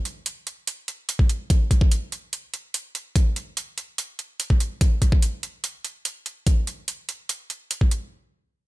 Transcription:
0.05 closed hi-hat
0.26 closed hi-hat
0.47 closed hi-hat
0.67 closed hi-hat
0.88 closed hi-hat
1.09 closed hi-hat
1.19 kick
1.29 closed hi-hat
1.50 kick, closed hi-hat
1.71 kick, closed hi-hat
1.81 kick
1.92 closed hi-hat
2.12 closed hi-hat
2.33 closed hi-hat
2.54 closed hi-hat
2.74 closed hi-hat
2.95 closed hi-hat
3.16 kick, closed hi-hat
3.36 closed hi-hat
3.57 closed hi-hat
3.78 closed hi-hat
3.98 closed hi-hat
4.19 closed hi-hat
4.40 closed hi-hat
4.50 kick
4.60 closed hi-hat
4.81 kick, closed hi-hat
5.02 kick, closed hi-hat
5.12 kick
5.22 closed hi-hat
5.43 closed hi-hat
5.64 closed hi-hat
5.84 closed hi-hat
6.05 closed hi-hat
6.26 closed hi-hat
6.47 kick, closed hi-hat
6.67 closed hi-hat
6.88 closed hi-hat
7.09 closed hi-hat
7.29 closed hi-hat
7.50 closed hi-hat
7.71 closed hi-hat
7.81 kick
7.91 closed hi-hat

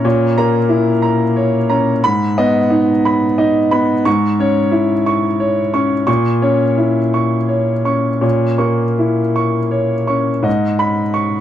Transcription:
Already playing: C#4 A#5
0.04 A#2 C#5
0.38 A#3 A#5
0.69 E4
1.02 A#5
1.36 C#5
1.70 C#4 A#5
2.04 G#2 B5
2.38 B3 D#5
2.70 D#4
3.05 B5
3.38 D#4 D#5
3.71 B3 B5
4.05 G#2 C#6
4.39 C#4 C#5
4.72 E4
5.06 C#6
5.40 C#5
5.74 C#4 C#6
6.07 A#2 C#6
6.42 C#4 C#5
6.78 E4
7.14 C#6
7.48 C#5
7.85 C#4 C#6
8.21 A#2 C#5
8.58 A#3 C#6
8.99 E4
9.36 C#6
9.71 C#5
10.07 C#4 C#6
10.42 G#2 D#5
10.79 B5
11.14 C#6

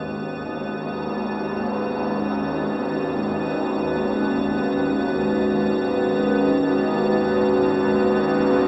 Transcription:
Already playing: G#1 D#2 G#3 B3 C#4 F#4 B4
0.77 B4

